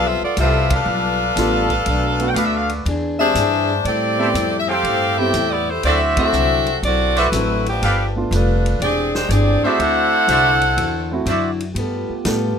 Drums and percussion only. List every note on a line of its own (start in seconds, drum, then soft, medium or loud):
0.37 hi-hat pedal medium
0.37 ride medium
0.70 kick medium
0.70 ride medium
1.37 snare soft
1.37 hi-hat pedal medium
1.37 ride medium
1.70 kick soft
1.70 ride soft
1.86 ride medium
2.20 ride soft
2.36 hi-hat pedal medium
2.36 ride medium
2.69 ride soft
2.86 ride medium
3.35 hi-hat pedal soft
3.35 ride medium
3.85 ride medium
4.35 hi-hat pedal soft
4.35 ride medium
4.84 ride medium
5.34 hi-hat pedal soft
5.34 ride medium
5.83 ride medium
6.17 kick medium
6.17 ride medium
6.33 hi-hat pedal soft
6.66 ride soft
6.83 ride medium
7.17 ride soft
7.33 hi-hat pedal medium
7.33 ride medium
7.66 ride soft
7.83 ride medium
8.32 hi-hat pedal soft
8.32 ride medium
8.66 ride soft
8.82 ride medium
9.15 snare medium
9.30 hi-hat pedal medium
9.30 ride medium
9.80 ride medium
10.28 hi-hat pedal soft
10.28 ride medium
10.62 ride soft
10.78 ride medium
11.26 hi-hat pedal medium
11.26 ride medium
11.60 ride soft
11.76 ride medium
12.25 snare medium
12.25 hi-hat pedal medium
12.25 ride medium